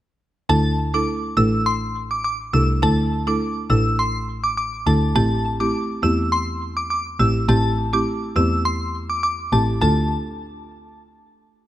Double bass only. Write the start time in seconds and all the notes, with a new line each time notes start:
0.49 D2
1.37 A1
2.54 C2
2.83 D2
3.70 A1
4.86 D2
5.16 A1
6.03 E2
7.19 A1
7.49 A1
8.36 E2
9.52 A1
9.82 D2